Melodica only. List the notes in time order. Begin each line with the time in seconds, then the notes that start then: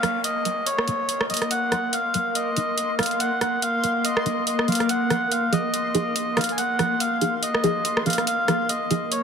Already playing: F5
0.24 D#5
0.66 C#5
1.30 D#5
1.51 F#5
1.93 F5
2.35 D#5
2.99 F5
3.20 F#5
3.41 F#5
3.63 F5
4.05 D#5
4.47 D#5
4.68 F5
4.89 F#5
5.32 F5
5.53 D#5
6.37 F5
6.52 G#5
6.58 F#5
7.00 F5
7.36 F5
7.42 D#5
8.06 F5
8.27 F5
8.69 D#5
9.12 C#5